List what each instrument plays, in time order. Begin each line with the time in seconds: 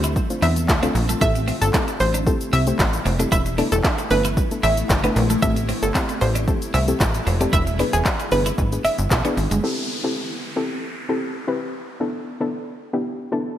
Already playing: analog synth bass D2, ambient pad D3 F3 A3 C4 F4
0.04 clean electric guitar E4, closed hi-hat, shaker
0.16 kick, shaker
0.30 synth pluck A3 C4 D4 F4 C5, closed hi-hat, shaker
0.42 analog synth bass E2, clean electric guitar D4, synth pluck E5, open hi-hat, shaker
0.56 closed hi-hat, shaker
0.69 analog synth bass D2, kick, snare, clap, shaker
0.82 synth pluck A3 C4 D4 F4 A4, clean electric guitar C4, closed hi-hat, shaker
0.95 analog synth bass A#1, muted clean electric guitar stroke, open hi-hat, shaker
1.09 clean electric guitar A3, closed hi-hat, shaker
1.21 analog synth bass A1, ambient pad C3 E3 G3 A3 E4, synth pluck A3 C4 E4 G4 A4 E5, clean electric guitar A3, kick, shaker
1.35 muted clean electric guitar stroke, closed hi-hat, shaker
1.48 clean electric guitar C4, open hi-hat, shaker
1.62 analog synth bass G1, synth pluck A4, closed hi-hat, shaker
1.74 synth pluck A3 C4 E4 G4 A4, clean electric guitar C4, kick, snare, clap, shaker
1.88 muted clean electric guitar stroke, closed hi-hat, shaker
2.00 analog synth bass A1, synth pluck C5, open hi-hat, shaker
2.14 clean electric guitar D4, closed hi-hat, shaker
2.26 synth pluck A3 C4 E4 G4 A4, kick, shaker
2.41 closed hi-hat, shaker
2.53 analog synth bass C2, clean electric guitar C4, synth pluck E5, open hi-hat, shaker
2.67 synth pluck A3 C4 E4 G4 C5, closed hi-hat, shaker
2.79 analog synth bass A1, muted clean electric guitar stroke, kick, snare, clap, shaker
2.93 closed hi-hat, shaker
3.06 analog synth bass F1, clean electric guitar C4, open hi-hat, shaker
3.19 synth pluck A3 C4 E4 G4 A4, clean electric guitar D4, closed hi-hat, shaker
3.32 analog synth bass E1, ambient pad D3 B3 E4, clean electric guitar E4, synth pluck E5, kick, shaker
3.46 muted clean electric guitar stroke, closed hi-hat, shaker
3.58 synth pluck A3 B3 D4 E4 A4, clean electric guitar D4, open hi-hat, shaker
3.72 analog synth bass E1, synth pluck A4, closed hi-hat, shaker
3.84 clean electric guitar D4, kick, snare, clap, shaker
3.98 muted clean electric guitar stroke, closed hi-hat, shaker
4.10 analog synth bass G1, synth pluck A3 B3 D4 E4 A4 B4, open hi-hat, shaker
4.25 clean electric guitar E4, closed hi-hat, shaker
4.37 kick, shaker
4.51 synth pluck A3 B3 D4 E4 A4, closed hi-hat, shaker
4.63 analog synth bass A1, clean electric guitar D4, synth pluck E5, open hi-hat, shaker
4.77 closed hi-hat, shaker
4.90 analog synth bass G1, kick, snare, clap, shaker
5.04 synth pluck A3 B3 D4 E4 B4, clean electric guitar B3, closed hi-hat, shaker
5.16 analog synth bass A#1, muted clean electric guitar stroke, open hi-hat, shaker
5.30 clean electric guitar A3, closed hi-hat, shaker
5.42 analog synth bass A1, ambient pad C3 G3, synth pluck A3 C4 E4 G4 A4 E5, clean electric guitar A3, kick, shaker
5.56 muted clean electric guitar stroke, closed hi-hat, shaker
5.69 clean electric guitar C4, open hi-hat, shaker
5.83 analog synth bass G1, synth pluck A4, closed hi-hat, shaker
5.95 synth pluck A3 C4 E4 G4 A4, clean electric guitar C4, kick, snare, clap, shaker
6.09 muted clean electric guitar stroke, closed hi-hat, shaker
6.21 analog synth bass A1, synth pluck C5, open hi-hat, shaker
6.35 clean electric guitar D4, closed hi-hat, shaker
6.47 synth pluck A3 C4 E4 G4 A4, kick, shaker
6.62 closed hi-hat, shaker
6.74 analog synth bass C2, clean electric guitar C4, synth pluck E5, open hi-hat, shaker
6.88 synth pluck A3 C4 E4 G4 A4, closed hi-hat, shaker
7.00 analog synth bass A1, muted clean electric guitar stroke, kick, snare, clap, shaker
7.14 closed hi-hat, shaker
7.27 analog synth bass F1, clean electric guitar C4, open hi-hat, shaker
7.40 synth pluck A3 C4 E4 G4 A4, clean electric guitar D4, closed hi-hat, shaker
7.53 analog synth bass E1, ambient pad D3 G#3 B3 E4, clean electric guitar E4, synth pluck E5, kick, shaker
7.67 muted clean electric guitar stroke, closed hi-hat, shaker
7.79 synth pluck B3 D4 E4 G#4 B4, clean electric guitar D4, open hi-hat, shaker
7.93 analog synth bass E1, synth pluck G#4, closed hi-hat, shaker
8.05 clean electric guitar D4, kick, snare, clap, shaker
8.20 muted clean electric guitar stroke, closed hi-hat, shaker
8.32 analog synth bass G1, synth pluck B3 D4 E4 G#4 B4, open hi-hat, shaker
8.46 clean electric guitar E4, closed hi-hat, shaker
8.58 analog synth bass G#1, kick, shaker
8.72 synth pluck B3 D4 E4 G#4 B4, closed hi-hat, shaker
8.85 analog synth bass G1, clean electric guitar D4, synth pluck E5, open hi-hat, shaker
8.98 analog synth bass G1, closed hi-hat, shaker
9.11 analog synth bass B1, kick, snare, clap, shaker
9.25 synth pluck B3 D4 E4 G#4 D5, clean electric guitar B3, closed hi-hat, shaker
9.37 analog synth bass G#1, muted clean electric guitar stroke, open hi-hat, shaker
9.51 analog synth bass G1, clean electric guitar G#3, closed hi-hat, shaker
9.63 synth pluck C4 E4 G4 A4, downlifter
10.04 synth pluck C4 E4 G4 A4
10.56 synth pluck C4 E4 G4 A4
11.09 synth pluck C4 E4 G4 A4
11.47 synth pluck C4 E4 G4 B4
12.00 synth pluck B3 D4 E4 A4
12.40 synth pluck B3 D4 E4 A4
12.93 synth pluck B3 D4 E4 G4
13.32 synth pluck B3 D4 E4 A4